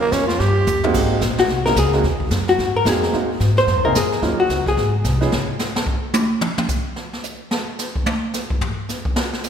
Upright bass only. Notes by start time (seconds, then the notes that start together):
Already playing: D#2
0.12 F2
0.40 G2
0.67 D#2
0.94 G#1
1.21 A#1
1.48 C2
1.76 C#2
2.03 D#2
2.31 F#2
2.58 G#2
2.85 F2
3.13 D#2
3.40 G#2
3.67 F#2
3.76 D#2
3.85 C2
3.95 F2
4.22 D#2
4.49 C#2
4.77 G#1
5.04 C2
5.32 C#2